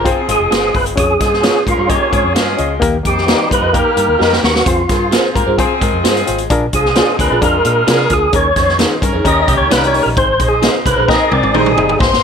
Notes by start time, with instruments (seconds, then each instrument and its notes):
Already playing: fingered electric bass G1
0.04 horn section F3 C4 G#4, reed electric piano C4 F4 G#4 C5, clean electric guitar C4 G#4, kick, closed hi-hat
0.28 fingered electric bass G#1, clean electric guitar G#3 F4, reed electric piano C4 F4 G#4 C5, tonewheel organ G#4, closed hi-hat
0.40 fingered electric bass F1
0.51 fingered electric bass G1, horn section F3 C4 G#4, reed electric piano C4 F4 G#4 C5, clean electric guitar F4 G#4 C5, snare, closed hi-hat
0.73 fingered electric bass G1, reed electric piano C4 F4 G#4 C5, tonewheel organ B4, kick, open hi-hat
0.86 closed hi-hat
0.96 fingered electric bass F2, reed electric piano C#4 F4 G#4 C#5, tonewheel organ G#4, kick, closed hi-hat
1.19 fingered electric bass G2, reed electric piano C#4 F4 G#4 D#5, horn section F4 G#4 C5, kick, snare, closed hi-hat
1.33 snare
1.42 reed electric piano C#4 F4 G#4 C#5, clean electric guitar F4 G#4 C#5, snare, closed hi-hat
1.65 fingered electric bass G#2, horn section A#3 G4 A#4, reed electric piano C#4 F4 G#4 A#4, tonewheel organ F4, kick, closed hi-hat
1.78 fingered electric bass G2, clean electric guitar F4 G#4 C#5
1.87 horn section F3 C#4 G#4, clean electric guitar A#3 G4, reed electric piano C#4 F4 G#4 D#5, tonewheel organ C#5, kick, closed hi-hat
2.11 fingered electric bass G#2, clean electric guitar C4 G#4, reed electric piano C#4 F4 G#4 C5, kick, closed hi-hat
2.24 fingered electric bass F2
2.34 fingered electric bass G2, horn section F3 C#4 G#4, clean electric guitar G#3 F4 G#4 C#5, reed electric piano C#4 F4 G#4 C#5, snare, closed hi-hat
2.57 fingered electric bass C#2, reed electric piano C#4 F4 G#4 D#5, closed hi-hat
2.80 fingered electric bass D#2, reed electric piano D#3 A#3 D#4 G4 A#4, kick, closed hi-hat
3.03 fingered electric bass F2, horn section G3 D#4 C5, reed electric piano A#3 D#4 G4 A#4, tonewheel organ G4, kick, closed hi-hat
3.18 snare
3.26 clean electric guitar G3 D#4 G4 A#4 D#5, reed electric piano A#3 D#4 G4 A#4, snare, closed hi-hat
3.49 fingered electric bass G2, horn section G3 D#4 A#4, reed electric piano A#3 D#4 G4 C5, clean electric guitar F4, tonewheel organ B4, kick, closed hi-hat
3.62 fingered electric bass F2, clean electric guitar G4 A#4 D#5
3.73 horn section D#3 A#3 G4, reed electric piano A#3 D#4 G4 A#4, clean electric guitar A#3 G4, tonewheel organ A#4, kick, closed hi-hat
3.96 fingered electric bass G2, reed electric piano A#3 D#4 G4 A#4, closed hi-hat
4.08 fingered electric bass D#2
4.19 fingered electric bass F2, horn section D#3 A#3 G4, reed electric piano A#3 D#4 G4 A#4, clean electric guitar G4 A#4 D#5, snare
4.33 snare
4.42 fingered electric bass D#2, reed electric piano A#3 D#4 G4 A#4, tonewheel organ F#4, snare
4.56 snare
4.66 fingered electric bass F2, reed electric piano C4 F4 G#4 C5, tonewheel organ F4, kick, closed hi-hat
4.89 fingered electric bass G2, reed electric piano C4 F4 G#4 A#4, horn section F4 G#4 C5, kick, snare, closed hi-hat
5.12 reed electric piano C4 F4 G#4 A#4, clean electric guitar F4 G#4 C5, snare, closed hi-hat
5.35 fingered electric bass G#2, horn section A#3 G4 A#4, reed electric piano C4 F4 G#4 C5, clean electric guitar A#4, kick, closed hi-hat
5.47 fingered electric bass G2, clean electric guitar F4 G#4 C5
5.58 horn section F3 C4 G#4, reed electric piano C4 F4 G#4 C5, clean electric guitar C4 G#4, kick, closed hi-hat
5.81 fingered electric bass G#2, clean electric guitar G#3 F4, reed electric piano C4 F4 G#4 A#4, kick, closed hi-hat
5.93 fingered electric bass F2
6.04 fingered electric bass G2, horn section F3 C4 G#4, reed electric piano C4 F4 G#4 C5, clean electric guitar F4 G#4 C5, snare, closed hi-hat
6.17 closed hi-hat
6.26 fingered electric bass G#1, reed electric piano C4 F4 G#4 C5, closed hi-hat
6.38 closed hi-hat
6.50 fingered electric bass A#1, reed electric piano A#2 D4 F4 G#4 A#4, kick, closed hi-hat
6.73 fingered electric bass C2, horn section G#3 F4 C5, reed electric piano D4 F4 G#4 C5, tonewheel organ G#4, kick, closed hi-hat
6.85 snare
6.95 clean electric guitar G#3 F4 G#4 D5, reed electric piano D4 F4 G#4 C5, snare, closed hi-hat
7.19 fingered electric bass D2, horn section F3 D4 A#4, clean electric guitar C4 G#4, reed electric piano D4 F4 G#4 A#4, tonewheel organ B4, kick, closed hi-hat
7.31 fingered electric bass A#1, clean electric guitar F4 G#4 D5
7.42 fingered electric bass F2, horn section F3 D4 G#4, clean electric guitar G#3 F4, reed electric piano D4 F4 G#4 A#4, tonewheel organ A#4, kick, closed hi-hat
7.65 fingered electric bass A#2, reed electric piano D4 F4 G#4 A#4, closed hi-hat
7.87 fingered electric bass C3, horn section F3 D4 G#4, reed electric piano D4 F4 G#4 A#4, clean electric guitar F4 G#4 D5, snare, closed hi-hat
8.10 fingered electric bass D2, reed electric piano D4 F4 G#4 A#4, tonewheel organ G#4, kick, closed hi-hat
8.32 fingered electric bass D#2, reed electric piano D#3 C#4 D#4 G#4 A#4, tonewheel organ C#5, kick, closed hi-hat
8.56 fingered electric bass F2, horn section G#3 D#4 C5, reed electric piano C#4 D#4 G#4 C5, kick, snare, closed hi-hat
8.69 snare
8.79 reed electric piano C#4 D#4 G#4 A#4, clean electric guitar D#4 G#4 C#5, snare, closed hi-hat
9.01 fingered electric bass G2, horn section D#3 C#4 A#4, reed electric piano C#4 D#4 G#4 A#4, kick, closed hi-hat
9.13 fingered electric bass F2, clean electric guitar D#4 G#4 C#5
9.24 fingered electric bass D#2, horn section D#3 C#4 G4, reed electric piano D#3 C#4 D#4 G4 A#4, clean electric guitar C#4 A#4, tonewheel organ D#5, kick, closed hi-hat
9.42 tonewheel organ D#5
9.47 fingered electric bass C2, clean electric guitar A#3 G4, reed electric piano C#4 D#4 G4 A#4, kick, closed hi-hat
9.58 fingered electric bass C#2, tonewheel organ C#5
9.71 fingered electric bass C2, horn section D#3 C#4 G4, clean electric guitar G3 D#4 G4 C#5, reed electric piano C#4 D#4 G4 A#4, tonewheel organ B4, snare, closed hi-hat
9.84 tonewheel organ C#5, closed hi-hat
9.94 reed electric piano C#4 D#4 G4 A#4, open hi-hat
10.03 fingered electric bass A#1, tonewheel organ A#4
10.17 fingered electric bass G#1, reed electric piano G#2 C4 D#4 G#4 C5, tonewheel organ C5, kick, closed hi-hat
10.39 fingered electric bass A#1, horn section G#3 D#4 C5, reed electric piano C4 D#4 G#4 C5, kick, closed hi-hat
10.48 tonewheel organ G#4
10.62 reed electric piano C4 D#4 G#4 D#5, clean electric guitar D#4 G#4 C5, snare, closed hi-hat
10.85 fingered electric bass C2, horn section A#3 G4 A#4, reed electric piano C4 D#4 G#4 C5, tonewheel organ B4, kick, closed hi-hat
10.97 fingered electric bass A#1, clean electric guitar D#4 G#4 C5
11.08 horn section D#3 C4 G#4, reed electric piano C4 D#4 G#4 D#5, clean electric guitar A#4, tonewheel organ D#5, kick, snare
11.31 fingered electric bass C2, reed electric piano C4 D#4 G#4 A#4, clean electric guitar C4 G#4, tonewheel organ D5, high tom
11.43 fingered electric bass G#1, high tom
11.54 fingered electric bass A#1, horn section D#3 C4 G#4, clean electric guitar G3 D#4 G#4 C5, reed electric piano C4 D#4 G#4 C5, tonewheel organ C5, mid tom
11.66 mid tom
11.71 tonewheel organ G#4
11.76 fingered electric bass G1, reed electric piano C4 D#4 G#4 D#5, floor tom
11.89 floor tom
11.99 fingered electric bass G#1, reed electric piano G#2 C4 D#4 G#4 C5, violin section C5 C6, kick, snare
12.13 snare